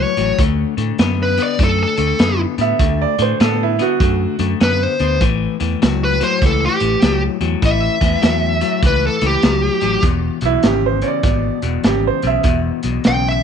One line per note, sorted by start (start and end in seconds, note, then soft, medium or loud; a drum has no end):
0.00 0.13 A2 medium
0.00 0.13 F#3 medium
0.00 0.40 C#5 medium
0.17 0.31 A1 medium
0.17 0.37 A2 medium
0.17 0.37 F#3 medium
0.17 closed hi-hat medium
0.39 0.64 D2 medium
0.39 0.74 D3 medium
0.39 0.74 A3 medium
0.39 kick loud
0.39 closed hi-hat medium
0.77 0.91 A2 medium
0.77 0.97 D3 medium
0.77 0.97 A3 medium
0.77 closed hi-hat medium
0.98 1.38 F#2 medium
0.98 1.34 D3 medium
0.98 1.34 B3 medium
0.98 snare loud
0.98 closed hi-hat medium
1.23 1.40 B4 medium
1.38 1.57 D3 medium
1.38 1.57 B3 medium
1.38 closed hi-hat medium
1.43 1.61 D5 medium
1.59 1.84 F#2 medium
1.59 1.94 D3 medium
1.59 1.95 A3 medium
1.59 kick loud
1.59 closed hi-hat medium
1.64 1.81 A4 medium
1.83 2.40 A4 medium
1.97 2.12 D2 medium
1.97 2.17 D3 medium
1.97 2.18 A3 medium
1.97 closed hi-hat medium
2.19 2.44 F#2 medium
2.19 2.54 D3 medium
2.19 2.54 B3 medium
2.19 snare loud
2.19 closed hi-hat medium
2.58 2.72 A2 medium
2.58 2.78 D3 medium
2.58 2.78 B3 medium
2.58 3.00 E5 medium
2.58 closed hi-hat medium
2.79 3.04 D2 medium
2.79 3.15 D3 medium
2.79 3.15 A3 medium
2.79 kick loud
2.79 closed hi-hat medium
3.02 3.20 D5 medium
3.19 3.33 A2 medium
3.19 3.38 D3 medium
3.19 3.38 A3 medium
3.19 3.41 C5 medium
3.19 closed hi-hat medium
3.40 3.79 A2 medium
3.40 3.75 D3 medium
3.40 3.75 B3 medium
3.40 3.61 A4 medium
3.40 snare loud
3.40 closed hi-hat medium
3.63 3.81 E4 medium
3.79 3.98 D3 medium
3.79 3.99 B3 medium
3.79 4.49 F#4 medium
3.79 closed hi-hat medium
4.00 4.25 F#2 medium
4.00 4.35 D3 medium
4.00 4.36 A3 medium
4.00 kick loud
4.00 closed hi-hat medium
4.39 4.53 F#2 medium
4.39 4.59 D3 medium
4.39 4.59 A3 medium
4.39 closed hi-hat medium
4.60 4.86 F#2 medium
4.60 4.95 D3 medium
4.60 4.96 B3 medium
4.60 4.84 B4 medium
4.60 snare loud
4.60 closed hi-hat medium
4.84 5.21 C5 medium
4.99 5.21 D2 medium
4.99 5.19 D3 medium
4.99 5.19 B3 medium
4.99 closed hi-hat soft
5.21 5.46 A1 medium
5.21 5.56 A2 medium
5.21 5.56 E3 medium
5.21 kick loud
5.21 closed hi-hat medium
5.60 5.74 E2 medium
5.60 5.79 A2 medium
5.60 5.80 E3 medium
5.60 closed hi-hat medium
5.82 6.20 C#2 medium
5.82 6.17 A2 medium
5.82 6.17 F#3 medium
5.82 snare loud
5.82 closed hi-hat medium
6.05 6.22 B4 medium
6.20 6.39 A2 medium
6.20 6.40 F#3 medium
6.20 6.42 C5 medium
6.20 snare soft
6.20 closed hi-hat medium
6.42 6.67 C#2 medium
6.42 6.77 A2 medium
6.42 6.77 E3 medium
6.42 kick loud
6.42 closed hi-hat medium
6.46 6.63 A4 medium
6.65 7.22 G4 medium
6.80 6.95 A1 medium
6.80 7.00 A2 medium
6.80 7.00 E3 medium
6.80 closed hi-hat medium
7.02 7.27 C#2 medium
7.02 7.37 A2 medium
7.02 7.37 F#3 medium
7.02 snare loud
7.02 closed hi-hat medium
7.41 7.54 E2 medium
7.41 7.60 A2 medium
7.41 7.60 F#3 medium
7.41 closed hi-hat medium
7.62 7.87 A1 medium
7.62 7.97 A2 medium
7.62 7.97 E3 medium
7.62 8.81 E5 medium
7.62 kick medium
7.62 closed hi-hat medium
8.01 8.15 E2 medium
8.01 8.20 A2 medium
8.01 8.21 E3 medium
8.01 kick medium
8.01 snare soft
8.01 closed hi-hat medium
8.22 8.61 E2 medium
8.22 8.57 A2 medium
8.22 8.57 F#3 medium
8.22 snare loud
8.22 closed hi-hat medium
8.61 8.80 A2 medium
8.61 8.81 F#3 medium
8.61 closed hi-hat medium
8.82 9.07 C#2 medium
8.82 9.17 A2 medium
8.82 9.18 E3 medium
8.82 kick loud
8.82 closed hi-hat medium
8.86 9.04 B4 medium
9.07 9.24 A4 medium
9.21 9.35 C#2 medium
9.21 9.41 A2 medium
9.21 9.41 E3 medium
9.21 snare soft
9.21 closed hi-hat medium
9.26 10.03 G4 loud
9.42 9.68 C#2 medium
9.42 9.78 A2 medium
9.42 9.78 F#3 medium
9.42 snare loud
9.42 closed hi-hat medium
9.81 9.96 A1 medium
9.81 10.01 A2 medium
9.81 10.01 F#3 medium
9.81 closed hi-hat medium
10.02 10.28 E1 medium
10.02 10.38 E2 medium
10.02 10.38 B2 medium
10.02 kick loud
10.02 closed hi-hat medium
10.41 10.56 B1 medium
10.41 10.61 E2 medium
10.41 10.62 B2 medium
10.41 closed hi-hat medium
10.45 10.64 E4 medium
10.63 11.02 G#1 medium
10.63 10.99 E2 medium
10.63 10.99 C#3 medium
10.63 10.84 G4 medium
10.63 snare loud
10.63 closed hi-hat medium
10.86 11.04 C5 medium
11.01 11.22 E2 medium
11.01 11.22 C#3 medium
11.01 11.07 C#5 soft
11.01 closed hi-hat medium
11.07 11.84 D5 medium
11.23 11.48 G#1 medium
11.23 11.59 E2 medium
11.23 11.59 B2 medium
11.23 kick loud
11.23 snare soft
11.23 closed hi-hat medium
11.62 11.76 E1 medium
11.62 11.82 E2 medium
11.62 11.82 B2 medium
11.62 closed hi-hat medium
11.84 12.09 G#1 medium
11.84 12.19 E2 medium
11.84 12.20 C#3 medium
11.84 12.05 G4 medium
11.84 snare medium
11.84 closed hi-hat medium
12.07 12.25 C5 medium
12.22 12.37 B1 medium
12.22 12.43 E2 medium
12.22 12.43 C#3 medium
12.22 closed hi-hat medium
12.27 12.58 E5 medium
12.43 12.69 E1 medium
12.43 12.80 E2 medium
12.43 12.80 B2 loud
12.43 kick loud
12.43 closed hi-hat medium
12.83 12.98 B1 medium
12.83 13.03 E2 medium
12.83 13.03 B2 medium
12.83 closed hi-hat medium
13.04 13.43 B1 medium
13.04 13.40 E2 medium
13.04 13.40 C#3 medium
13.04 13.26 G5 loud
13.04 snare loud
13.04 closed hi-hat medium
13.29 13.43 E5 medium